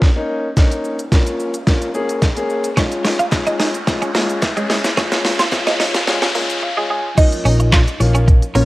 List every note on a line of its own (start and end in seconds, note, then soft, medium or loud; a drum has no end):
0.00 kick loud
0.00 snare medium
0.00 riser medium
0.16 0.46 A#3 medium
0.16 0.46 C#4 medium
0.16 0.46 D#4 medium
0.57 0.97 A#3 medium
0.57 0.97 C#4 medium
0.57 0.98 D#4 medium
0.57 kick loud
0.57 snare medium
0.57 closed hi-hat medium
0.57 shaker medium
0.71 closed hi-hat medium
0.71 shaker medium
0.84 shaker medium
0.99 closed hi-hat medium
0.99 shaker medium
1.12 1.52 A#3 medium
1.12 1.52 C#4 medium
1.12 1.53 F4 medium
1.12 kick loud
1.12 snare medium
1.12 closed hi-hat medium
1.12 shaker medium
1.27 closed hi-hat medium
1.27 shaker medium
1.40 shaker medium
1.54 closed hi-hat medium
1.54 shaker medium
1.67 1.87 A#3 medium
1.67 1.87 C#4 medium
1.67 1.88 F4 loud
1.67 kick loud
1.67 snare medium
1.67 closed hi-hat medium
1.67 shaker medium
1.82 closed hi-hat medium
1.82 shaker medium
1.94 2.24 A#3 medium
1.94 2.25 C#4 medium
1.94 2.25 G#4 medium
1.94 shaker soft
2.09 closed hi-hat medium
2.09 shaker medium
2.22 kick loud
2.22 snare medium
2.22 closed hi-hat medium
2.22 shaker medium
2.36 2.66 A#3 medium
2.36 2.66 C#4 medium
2.36 2.66 G#4 medium
2.36 closed hi-hat medium
2.36 shaker medium
2.50 shaker soft
2.64 closed hi-hat medium
2.64 shaker medium
2.77 3.18 G#3 medium
2.77 3.18 C#4 medium
2.77 2.86 C#4 medium
2.77 3.18 F4 medium
2.77 kick loud
2.77 snare medium
2.77 closed hi-hat medium
2.77 shaker medium
2.92 closed hi-hat medium
2.92 shaker medium
3.05 muted clean electric guitar stroke soft
3.05 snare medium
3.05 open hi-hat medium
3.05 shaker medium
3.19 3.27 F4 medium
3.19 closed hi-hat medium
3.19 shaker medium
3.32 3.73 G#3 medium
3.32 3.73 C#4 medium
3.32 3.73 F4 medium
3.32 muted clean electric guitar stroke soft
3.32 kick loud
3.32 snare medium
3.32 clap medium
3.32 closed hi-hat medium
3.32 shaker medium
3.47 3.54 D#4 medium
3.47 closed hi-hat medium
3.47 shaker medium
3.60 3.68 D#4 medium
3.60 snare medium
3.60 open hi-hat medium
3.60 shaker medium
3.74 closed hi-hat medium
3.74 shaker medium
3.87 4.07 G#3 medium
3.87 4.08 C#4 medium
3.87 4.08 F4 loud
3.87 muted clean electric guitar stroke soft
3.87 kick loud
3.87 snare medium
3.87 closed hi-hat medium
3.87 shaker medium
4.02 4.09 C#4 medium
4.02 closed hi-hat medium
4.02 shaker medium
4.14 4.45 G#3 medium
4.14 4.23 A#3 medium
4.14 4.45 C#4 medium
4.14 4.45 F4 loud
4.14 snare loud
4.14 open hi-hat medium
4.14 shaker medium
4.29 closed hi-hat medium
4.29 shaker medium
4.42 muted clean electric guitar stroke soft
4.42 kick loud
4.42 snare medium
4.42 clap medium
4.42 closed hi-hat medium
4.42 shaker medium
4.57 4.86 G#3 medium
4.57 4.64 G#3 medium
4.57 4.87 C#4 medium
4.57 4.87 G#4 medium
4.57 closed hi-hat medium
4.57 shaker medium
4.70 4.78 G#3 medium
4.70 snare loud
4.70 open hi-hat medium
4.70 shaker soft
4.84 snare loud
4.84 closed hi-hat medium
4.84 shaker medium
4.97 5.38 G#3 medium
4.97 5.38 C#4 medium
4.97 5.06 C#4 medium
4.97 5.38 F4 loud
4.97 kick loud
4.97 snare loud
4.97 closed hi-hat medium
4.97 shaker medium
5.12 snare loud
5.12 closed hi-hat medium
5.12 shaker medium
5.25 muted clean electric guitar stroke soft
5.25 snare loud
5.25 open hi-hat medium
5.25 shaker medium
5.39 5.47 F4 medium
5.39 snare loud
5.39 closed hi-hat medium
5.39 shaker medium
5.52 5.93 G#3 medium
5.52 5.93 C#4 medium
5.52 5.93 F4 loud
5.52 muted clean electric guitar stroke soft
5.52 kick loud
5.52 snare loud
5.52 clap medium
5.52 closed hi-hat medium
5.52 shaker medium
5.67 5.75 D#4 medium
5.67 snare loud
5.67 closed hi-hat medium
5.67 shaker medium
5.80 5.88 D#4 medium
5.80 snare loud
5.80 open hi-hat medium
5.80 shaker medium
5.95 snare loud
5.95 closed hi-hat medium
5.95 shaker medium
6.07 6.28 G#3 medium
6.07 6.28 C#4 medium
6.07 6.28 F4 loud
6.07 muted clean electric guitar stroke soft
6.07 snare loud
6.07 closed hi-hat medium
6.07 shaker medium
6.22 6.30 C#4 medium
6.22 snare loud
6.22 closed hi-hat medium
6.22 shaker medium
6.35 6.65 G#3 medium
6.35 6.44 A#3 medium
6.35 6.65 C#4 medium
6.35 6.65 F4 loud
6.35 open hi-hat medium
6.35 shaker medium
6.50 closed hi-hat medium
6.50 shaker medium
6.63 6.88 F5 medium
6.63 muted clean electric guitar stroke soft
6.77 7.07 G#3 medium
6.77 6.85 G#3 medium
6.77 7.07 C#4 medium
6.77 7.07 F4 loud
6.90 6.99 G#3 medium
6.90 7.16 G#5 medium
7.17 7.77 F3 medium
7.17 7.77 A#3 medium
7.17 7.77 C#4 medium
7.17 7.26 D#4 medium
7.17 7.36 D#4 medium
7.17 7.78 F4 medium
7.17 7.36 D#5 loud
7.17 kick loud
7.17 closed hi-hat medium
7.17 crash loud
7.17 shaker medium
7.32 closed hi-hat medium
7.32 shaker medium
7.45 7.85 A#1 medium
7.45 7.54 C#4 medium
7.45 7.97 D#4 medium
7.45 7.97 D#5 medium
7.45 open hi-hat medium
7.45 shaker medium
7.60 muted clean electric guitar stroke soft
7.60 closed hi-hat medium
7.60 shaker medium
7.72 7.81 F4 medium
7.72 kick loud
7.72 snare medium
7.72 clap medium
7.72 clap loud
7.72 closed hi-hat medium
7.72 shaker medium
7.87 closed hi-hat medium
7.87 shaker medium
8.00 8.40 A#1 medium
8.00 8.40 F3 medium
8.00 8.41 A#3 medium
8.00 8.41 C#4 medium
8.00 8.41 F4 medium
8.00 muted clean electric guitar stroke soft
8.00 open hi-hat medium
8.00 shaker medium
8.15 8.22 C#4 medium
8.15 closed hi-hat medium
8.15 shaker medium
8.28 muted clean electric guitar stroke soft
8.28 kick loud
8.28 closed hi-hat medium
8.28 shaker medium
8.42 closed hi-hat medium
8.42 shaker medium
8.55 8.65 A#1 medium
8.55 8.65 F3 medium
8.55 8.65 A#3 medium
8.55 8.64 A#3 medium
8.55 8.65 C#4 medium
8.55 8.65 F4 medium
8.55 8.65 C#5 medium
8.55 open hi-hat medium
8.55 shaker medium